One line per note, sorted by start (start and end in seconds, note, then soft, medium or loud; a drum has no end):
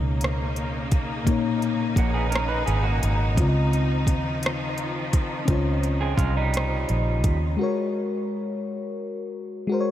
0.00 1.28 C#2 medium
0.00 1.22 B2 medium
0.00 3.34 C#3 medium
0.00 1.23 A#3 medium
0.00 3.34 A#3 medium
0.00 1.27 D#4 medium
0.00 7.55 D#4 medium
0.00 1.25 C#5 medium
0.21 cross-stick loud
0.21 closed hi-hat medium
0.56 closed hi-hat soft
0.92 kick medium
0.92 closed hi-hat medium
1.25 1.93 B1 medium
1.25 3.32 A#2 medium
1.25 3.34 A#3 medium
1.25 kick loud
1.25 closed hi-hat medium
1.29 3.35 D#4 medium
1.29 3.36 C#5 medium
1.62 closed hi-hat soft
1.96 2.63 A#1 medium
1.96 2.15 A#3 medium
1.96 2.14 F#4 medium
1.96 kick medium
1.96 closed hi-hat medium
2.14 2.31 B3 medium
2.14 2.30 G#4 medium
2.30 2.48 C#4 medium
2.30 2.48 A#4 medium
2.30 closed hi-hat medium
2.35 cross-stick loud
2.48 2.66 D#4 medium
2.48 2.66 B4 medium
2.66 2.99 G#1 medium
2.66 2.82 B3 medium
2.66 2.83 G#4 medium
2.66 closed hi-hat soft
2.83 3.34 A#3 medium
2.83 3.34 F#4 medium
3.03 3.39 G#1 medium
3.03 closed hi-hat medium
3.35 4.08 C#2 medium
3.35 5.43 C#3 medium
3.35 7.55 D#3 medium
3.35 7.55 F3 medium
3.35 5.44 C4 medium
3.35 kick loud
3.35 closed hi-hat medium
3.40 5.45 F4 medium
3.40 3.46 D5 medium
3.49 5.50 D#5 medium
3.73 closed hi-hat soft
4.07 5.44 D#2 medium
4.07 kick medium
4.07 closed hi-hat medium
4.43 cross-stick loud
4.43 closed hi-hat medium
4.78 closed hi-hat soft
5.13 kick medium
5.13 closed hi-hat medium
5.45 6.15 C#2 medium
5.45 7.53 C#4 medium
5.45 7.54 C5 medium
5.45 kick loud
5.45 closed hi-hat medium
5.50 7.56 F4 medium
5.50 7.57 C#5 medium
5.83 closed hi-hat soft
6.01 6.18 C4 medium
6.01 6.17 G#4 medium
6.17 6.85 C2 medium
6.17 6.35 G#3 medium
6.17 6.34 F4 medium
6.17 kick medium
6.17 closed hi-hat medium
6.37 7.38 G3 medium
6.37 7.38 D#4 medium
6.54 cross-stick loud
6.54 closed hi-hat medium
6.89 7.24 A#1 medium
6.89 closed hi-hat soft
7.24 7.56 D#2 medium
7.24 kick medium
7.24 closed hi-hat medium
7.57 9.64 G#3 medium
7.57 9.65 F#4 medium
7.61 9.66 A#4 medium
7.61 9.67 C#5 medium
9.67 9.91 G#3 medium
9.67 9.91 F#4 medium
9.72 9.91 A#4 medium
9.72 9.78 C5 medium
9.80 9.91 C#5 medium